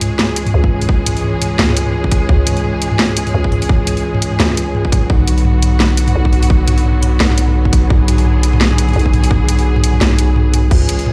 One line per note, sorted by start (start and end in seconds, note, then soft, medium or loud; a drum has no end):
0.00 0.52 C#2 medium
0.00 5.06 E3 medium
0.00 5.06 G#3 medium
0.00 5.06 C#4 medium
0.00 5.06 G#4 medium
0.00 closed hi-hat medium
0.00 mid tom medium
0.19 snare loud
0.19 mid tom medium
0.36 closed hi-hat medium
0.46 mid tom medium
0.46 open hi-hat soft
0.54 1.58 C#2 loud
0.64 kick medium
0.64 mid tom medium
0.81 mid tom medium
0.81 open hi-hat medium
0.89 kick loud
1.06 closed hi-hat medium
1.06 mid tom medium
1.17 open hi-hat soft
1.24 mid tom medium
1.42 closed hi-hat medium
1.42 mid tom medium
1.59 2.28 C#2 loud
1.59 snare loud
1.59 open hi-hat soft
1.69 snare soft
1.69 mid tom medium
1.77 closed hi-hat medium
1.87 mid tom medium
2.04 kick medium
2.04 mid tom medium
2.12 kick loud
2.12 closed hi-hat medium
2.29 3.33 C#2 loud
2.29 kick loud
2.29 mid tom medium
2.47 closed hi-hat medium
2.47 mid tom soft
2.52 mid tom soft
2.57 mid tom soft
2.57 open hi-hat soft
2.61 mid tom soft
2.64 mid tom medium
2.82 closed hi-hat medium
2.92 mid tom medium
2.99 snare loud
3.09 mid tom medium
3.17 closed hi-hat medium
3.27 mid tom medium
3.27 open hi-hat soft
3.34 4.38 C#2 loud
3.44 kick medium
3.52 mid tom medium
3.52 open hi-hat soft
3.62 open hi-hat medium
3.69 kick loud
3.69 mid tom medium
3.87 closed hi-hat medium
3.87 mid tom medium
3.97 open hi-hat soft
4.15 mid tom medium
4.22 closed hi-hat medium
4.32 mid tom medium
4.40 5.09 C#2 loud
4.40 snare loud
4.40 open hi-hat soft
4.50 snare soft
4.50 mid tom medium
4.57 closed hi-hat medium
4.75 mid tom medium
4.85 kick medium
4.92 kick loud
4.92 closed hi-hat medium
4.92 mid tom medium
5.10 6.14 B1 loud
5.10 10.67 D3 medium
5.10 10.67 F#3 medium
5.10 10.67 B3 medium
5.10 7.88 F#4 medium
5.10 kick loud
5.20 mid tom medium
5.28 closed hi-hat medium
5.38 open hi-hat soft
5.45 mid tom medium
5.62 closed hi-hat medium
5.62 mid tom medium
5.80 snare loud
5.80 mid tom medium
5.97 closed hi-hat medium
6.08 mid tom medium
6.08 open hi-hat soft
6.15 7.19 B1 loud
6.25 kick medium
6.25 mid tom medium
6.33 open hi-hat soft
6.43 mid tom soft
6.43 open hi-hat medium
6.50 kick loud
6.68 closed hi-hat medium
6.68 mid tom medium
6.78 open hi-hat soft
6.85 mid tom medium
7.03 closed hi-hat medium
7.03 mid tom medium
7.20 7.89 B1 loud
7.20 snare loud
7.20 open hi-hat soft
7.30 snare soft
7.30 mid tom medium
7.38 closed hi-hat medium
7.48 mid tom medium
7.65 kick medium
7.65 mid tom medium
7.73 kick loud
7.73 closed hi-hat medium
7.90 8.95 B1 loud
7.90 10.68 G#4 medium
7.90 kick loud
7.90 mid tom medium
8.08 closed hi-hat medium
8.08 mid tom medium
8.18 open hi-hat soft
8.26 mid tom medium
8.43 closed hi-hat medium
8.53 mid tom medium
8.61 snare loud
8.71 mid tom medium
8.78 closed hi-hat medium
8.89 mid tom medium
8.89 open hi-hat soft
8.93 10.00 B1 loud
8.93 open hi-hat soft
8.99 open hi-hat soft
9.06 kick medium
9.13 mid tom medium
9.13 open hi-hat soft
9.24 open hi-hat medium
9.31 kick loud
9.31 mid tom medium
9.49 closed hi-hat medium
9.49 mid tom medium
9.59 open hi-hat soft
9.76 mid tom medium
9.84 closed hi-hat medium
9.94 mid tom medium
10.01 10.70 B1 loud
10.01 snare loud
10.01 open hi-hat soft
10.11 snare soft
10.11 mid tom medium
10.19 closed hi-hat medium
10.36 mid tom medium
10.54 closed hi-hat medium
10.54 mid tom medium
10.71 11.13 C#2 loud
10.71 11.13 E3 medium
10.71 11.13 G#3 medium
10.71 11.13 C#4 medium
10.71 11.13 G#4 medium
10.71 kick loud
10.71 crash loud
10.81 mid tom medium
10.89 closed hi-hat medium
10.99 open hi-hat soft
11.06 mid tom medium